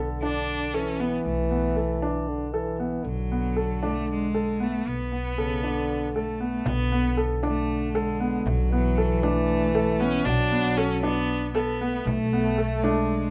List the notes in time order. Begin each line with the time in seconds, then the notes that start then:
Already playing: B1 D3 A4
0.22 D4
0.74 E3 C#4 A4
1.00 B3
1.25 B1 A3
1.51 B3
1.76 A4
2.02 D4
2.28 D3
2.53 E3 A4
2.80 B3
3.04 B1 D3 F#3
3.32 B3
3.56 A4
3.83 A3 D4
4.11 G#3
4.34 A4
4.60 A3 B3
4.86 B1 B3
5.12 B3
5.38 C#3 A4
5.63 D3 D4
6.14 A3 A4
6.40 B3
6.65 B1 D3 B3, frame drum
6.92 B3
7.17 A4
7.43 A3 D4, frame drum
7.95 G#3 A4, frame drum
8.20 B3
8.46 B1 F#3, frame drum
8.71 E3 B3
8.98 A4
9.23 A3 D4, frame drum
9.75 A4, frame drum
10.00 B3 C#4
10.25 B1 F#3 D4, frame drum
10.52 B3
10.78 C#4 A4
11.03 B3 D4, frame drum
11.53 B3 A4, frame drum
11.79 A3 B3
12.04 B1 A3, frame drum
12.33 B3
12.58 A4
12.82 G#3 D4, frame drum